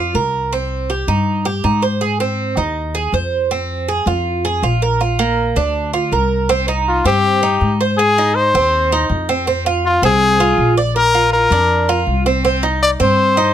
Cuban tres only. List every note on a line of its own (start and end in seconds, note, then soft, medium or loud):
0.00 0.14 F4 medium
0.15 0.51 A#4 medium
0.53 0.89 C4 medium
0.90 1.08 G4 medium
1.08 1.44 D#4 medium
1.45 1.64 G4 medium
1.64 1.82 D#4 medium
1.82 2.01 C5 medium
2.01 2.19 G#4 medium
2.20 2.56 C4 medium
2.57 2.94 D#4 medium
2.95 3.13 G#4 medium
3.14 3.50 C5 medium
3.51 3.87 C4 medium
3.88 4.06 G#4 medium
4.07 4.43 F4 medium
4.45 4.63 G#4 medium
4.63 4.81 F4 medium
4.82 5.00 A#4 medium
5.01 5.19 F4 medium
5.19 5.55 A#3 medium
5.56 5.92 D4 medium
5.93 6.12 F4 medium
6.12 6.48 A#4 medium
6.49 6.67 C4 medium
6.68 7.04 D#4 medium
7.05 7.41 C4 medium
7.43 7.79 D#4 medium
7.80 7.98 C5 medium
7.99 8.17 G#4 medium
8.18 8.54 D#4 medium
8.55 8.91 C4 loud
8.92 9.28 D#4 medium
9.29 9.46 C4 medium
9.47 9.65 C4 medium
9.66 10.02 F4 medium
10.03 10.39 C4 loud
10.40 10.76 F4 medium
10.77 10.95 D5 medium
10.96 11.14 A#4 medium
11.14 11.50 F4 medium
11.52 11.88 D4 loud
11.89 12.25 F4 medium
12.26 12.43 C4 medium
12.45 12.62 C4 medium
12.63 12.99 D#4 medium
13.00 13.36 C4 loud
13.37 13.54 D#4 medium